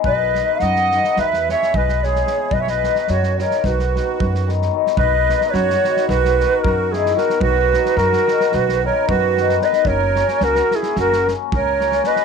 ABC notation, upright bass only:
X:1
M:9/8
L:1/8
Q:3/8=74
K:B
V:1 name="Upright bass" clef=bass
B,,,2 F,,2 E,,2 B,,,3 | B,,,2 F,,2 B,,,2 F,,3 | B,,,2 F,, z B,,,2 F,,3 | B,,,2 F,, z B,,,2 F,,3 |
F,,,2 C,, z F,,,2 C,,3 |]